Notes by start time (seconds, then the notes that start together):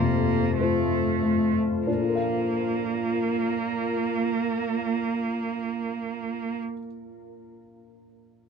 Already playing: F2 A3 F4 A4 C5
0.00 C3 A#3
0.58 A3 F4 C5
1.23 A3
1.86 A#2 A#3 D4 F4 A#4
1.94 A#3
2.01 F4
2.08 A#4
2.15 F5